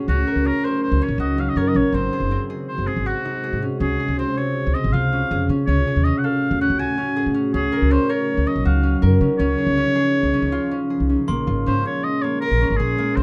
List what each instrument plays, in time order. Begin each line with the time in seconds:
Already playing: harp F#4 G#4
0.08 upright bass C#2, ambient pad C#3 F#3 D#4, harp C#4, oboe F#4
0.27 harp A#4
0.36 upright bass C#2
0.45 harp C#4, oboe A#4
0.65 harp A#4, oboe C5
0.82 oboe C5
0.92 upright bass C#2
1.02 harp C#4, oboe C#5
1.09 upright bass A#1
1.18 upright bass C#2, harp F#4, oboe D#5
1.38 harp C#4, oboe F5
1.49 oboe D#5
1.56 upright bass F#2, harp A#4, oboe C#5
1.68 oboe D#5
1.75 upright bass A#1, harp C#4, oboe C#5
1.93 upright bass G#1, ambient pad C3 G#3 F#4, harp C4, oboe C5
2.13 harp G#4
2.20 upright bass F#1
2.31 harp C4
2.50 harp G#4
2.68 oboe C5
2.78 upright bass F#1
2.87 harp C4, oboe G#4
2.97 upright bass G#1
3.06 harp F#4, oboe F#4
3.25 harp D#4
3.44 harp G#4
3.53 upright bass G#2
3.62 harp C#4
3.80 upright bass C#2, ambient pad C3 C#3 F4, harp C#4, oboe G#4
4.00 harp G#4
4.08 upright bass C#2
4.18 harp C4, oboe C5
4.37 harp G#4, oboe C#5
4.67 upright bass C#2
4.74 harp C4, oboe D#5
4.84 upright bass G#1
4.93 upright bass C#2, harp F4, oboe F5
5.13 harp C#4
5.31 upright bass F2, harp G#4
5.49 upright bass C#3, harp C#4
5.67 upright bass C#2, ambient pad A2 A3 F#4, harp C#4, oboe C#5
5.87 harp G#4
5.96 upright bass D#2
6.04 harp C#4, oboe D#5
6.18 oboe F#5
6.24 harp A4, oboe F5
6.51 upright bass D#2
6.61 harp C#4, oboe F#5
6.70 upright bass C#2
6.79 harp F#4, oboe G#5
6.98 harp C#4
7.16 harp G#4
7.26 upright bass C#3
7.34 harp C#4
7.54 upright bass C#2, ambient pad C#3 F#3 D#4, harp C#4, oboe G#4
7.72 harp A#4
7.82 upright bass C#2
7.91 harp C#4, oboe C5
8.09 harp A#4, oboe C#5
8.37 upright bass C#2
8.47 harp C#4, oboe D#5
8.56 upright bass A#1
8.65 upright bass C#2, harp F#4, oboe F5
8.83 harp C#4
9.02 upright bass F#2, harp A#4
9.21 upright bass C#3, harp C#4
9.38 upright bass C#2, ambient pad F3 D#4, harp C#4, oboe C#5
9.58 harp G#4
9.67 upright bass C2
9.77 harp C#4
9.95 harp G#4
10.23 upright bass C2
10.34 harp C#4
10.42 upright bass C#2
10.52 harp F4
10.71 harp C#4
10.90 harp G#4
11.00 upright bass C2
11.09 harp C#4
11.27 upright bass A#1, ambient pad A#2 G#3 C#4, harp A#3, glockenspiel C6
11.47 upright bass G#1, harp F4
11.66 upright bass G#2, harp C#4, oboe C5
11.85 harp G#4, oboe C#5
12.04 oboe D#5
12.22 harp A#3, oboe C#5
12.41 oboe A#4, harp A#4
12.51 upright bass A#1
12.61 harp C#4
12.69 upright bass G#1, oboe A#4
12.76 upright bass A#1, oboe G#4, harp G#4
12.98 harp A#3
13.16 upright bass C2, harp C4, oboe C5